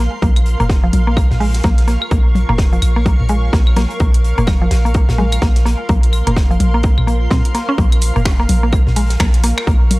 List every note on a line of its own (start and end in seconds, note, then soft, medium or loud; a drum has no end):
0.00 9.99 A#4 medium
0.00 9.99 F5 medium
0.00 0.53 C6 medium
0.22 0.56 A#1 medium
0.22 0.27 A#3 medium
0.22 kick loud
0.22 closed hi-hat medium
0.22 high tom medium
0.36 closed hi-hat soft
0.36 claves medium
0.46 closed hi-hat medium
0.50 4.31 C#6 medium
0.60 0.90 F1 medium
0.60 0.64 A#3 loud
0.60 closed hi-hat soft
0.60 mid tom medium
0.70 kick loud
0.70 snare loud
0.70 closed hi-hat medium
0.84 0.88 F3 medium
0.93 1.27 A#1 loud
0.93 closed hi-hat soft
0.93 closed hi-hat medium
0.93 high tom medium
1.07 1.10 A#3 medium
1.17 kick loud
1.17 closed hi-hat medium
1.17 claves medium
1.31 1.61 A#1 medium
1.31 snare soft
1.31 mid tom medium
1.40 1.47 G#3 medium
1.40 open hi-hat medium
1.54 snare soft
1.54 closed hi-hat soft
1.64 1.97 A#1 medium
1.64 1.70 A#3 medium
1.64 kick loud
1.64 snare medium
1.64 closed hi-hat medium
1.64 high tom medium
1.78 snare soft
1.78 closed hi-hat soft
1.88 1.94 A#3 medium
1.88 snare soft
1.88 closed hi-hat medium
2.02 claves medium
2.11 2.45 A#1 loud
2.11 2.15 A#3 medium
2.11 kick loud
2.11 closed hi-hat medium
2.35 closed hi-hat medium
2.35 high tom medium
2.49 2.79 F1 medium
2.49 2.53 A#3 loud
2.49 mid tom medium
2.58 kick loud
2.58 snare loud
2.58 closed hi-hat medium
2.73 2.77 F3 medium
2.73 closed hi-hat soft
2.82 3.15 A#1 loud
2.82 closed hi-hat soft
2.82 closed hi-hat medium
2.82 claves medium
2.96 2.99 A#3 medium
3.06 kick loud
3.06 closed hi-hat medium
3.06 high tom medium
3.20 3.50 A#1 medium
3.20 mid tom medium
3.29 3.36 G#3 medium
3.29 closed hi-hat medium
3.53 3.86 A#1 loud
3.53 3.59 A#3 medium
3.53 kick loud
3.53 snare loud
3.53 closed hi-hat medium
3.67 claves medium
3.76 3.83 A#3 medium
3.76 snare medium
3.76 closed hi-hat medium
3.76 closed hi-hat soft
3.76 high tom medium
3.90 closed hi-hat soft
4.00 4.34 A#1 medium
4.00 4.04 A#3 medium
4.00 kick loud
4.00 closed hi-hat medium
4.14 closed hi-hat soft
4.24 8.09 C6 medium
4.24 closed hi-hat medium
4.38 4.68 F1 medium
4.38 4.42 A#3 loud
4.38 closed hi-hat soft
4.38 mid tom medium
4.47 kick loud
4.47 snare loud
4.47 closed hi-hat medium
4.47 high tom medium
4.47 claves medium
4.62 4.66 F3 medium
4.71 5.04 A#1 loud
4.71 snare medium
4.71 closed hi-hat soft
4.71 closed hi-hat medium
4.85 4.88 A#3 medium
4.85 closed hi-hat soft
4.94 kick loud
4.94 closed hi-hat medium
5.09 5.39 A#1 medium
5.09 snare loud
5.09 closed hi-hat medium
5.09 mid tom medium
5.18 5.25 G#3 medium
5.18 closed hi-hat soft
5.18 high tom medium
5.32 closed hi-hat medium
5.32 closed hi-hat soft
5.32 claves medium
5.42 5.75 A#1 loud
5.42 5.48 A#3 medium
5.42 kick loud
5.42 snare loud
5.42 closed hi-hat medium
5.56 snare soft
5.56 closed hi-hat soft
5.65 5.72 A#3 medium
5.65 snare medium
5.65 closed hi-hat medium
5.89 6.23 A#1 medium
5.89 5.93 A#3 medium
5.89 kick loud
5.89 closed hi-hat medium
5.89 high tom medium
6.03 closed hi-hat soft
6.13 closed hi-hat medium
6.13 claves medium
6.27 6.57 F1 medium
6.27 6.31 A#3 loud
6.27 closed hi-hat soft
6.27 mid tom medium
6.36 kick loud
6.36 snare loud
6.36 closed hi-hat medium
6.51 6.55 F3 medium
6.51 closed hi-hat soft
6.60 6.93 A#1 loud
6.60 closed hi-hat soft
6.60 closed hi-hat medium
6.60 high tom medium
6.74 6.77 A#3 medium
6.83 kick loud
6.83 closed hi-hat medium
6.98 7.28 A#1 medium
6.98 mid tom medium
6.98 claves medium
7.07 7.14 A#3 medium
7.07 closed hi-hat medium
7.31 7.42 A#2 medium
7.31 7.35 C4 medium
7.31 kick loud
7.31 snare loud
7.31 closed hi-hat medium
7.31 high tom medium
7.45 closed hi-hat soft
7.55 7.61 A#3 medium
7.55 snare soft
7.55 closed hi-hat soft
7.55 closed hi-hat medium
7.69 7.72 C#4 loud
7.78 8.12 A#1 medium
7.78 7.82 A#3 medium
7.78 kick loud
7.78 closed hi-hat medium
7.78 high tom medium
7.92 closed hi-hat soft
7.92 claves medium
8.01 closed hi-hat medium
8.01 open hi-hat medium
8.06 9.99 C#6 medium
8.16 8.46 F1 medium
8.16 8.20 A#3 loud
8.16 closed hi-hat soft
8.16 mid tom medium
8.25 finger snap medium
8.25 kick loud
8.25 snare loud
8.25 closed hi-hat medium
8.40 8.42 A#3 loud
8.49 8.82 A#1 loud
8.49 closed hi-hat medium
8.49 open hi-hat medium
8.49 high tom medium
8.63 8.66 A#3 medium
8.73 kick loud
8.73 closed hi-hat medium
8.73 claves medium
8.87 9.17 A#1 medium
8.87 snare soft
8.87 mid tom medium
8.96 9.03 G#3 medium
8.96 open hi-hat medium
9.10 snare soft
9.10 closed hi-hat soft
9.20 9.53 A#1 loud
9.20 9.26 A#3 medium
9.20 finger snap medium
9.20 kick loud
9.20 snare loud
9.20 closed hi-hat medium
9.20 high tom medium
9.34 snare soft
9.34 closed hi-hat soft
9.44 9.50 A#3 medium
9.44 snare soft
9.44 closed hi-hat medium
9.44 open hi-hat medium
9.58 finger snap medium
9.58 claves medium
9.67 9.99 A#1 medium
9.67 9.71 A#3 medium
9.67 kick loud
9.67 closed hi-hat medium
9.91 closed hi-hat medium
9.91 open hi-hat medium
9.91 high tom medium